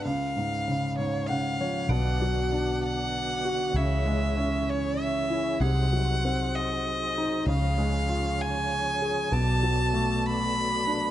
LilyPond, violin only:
\new Staff \with { instrumentName = "Violin" } { \time 6/8 \key cis \phrygian \tempo 4. = 65 eis''4. cis''8 eis''4 | fis''4. fis''4. | e''4. cis''8 e''4 | fis''4. dis''4. |
eis''4. gis''4. | a''4. b''4. | }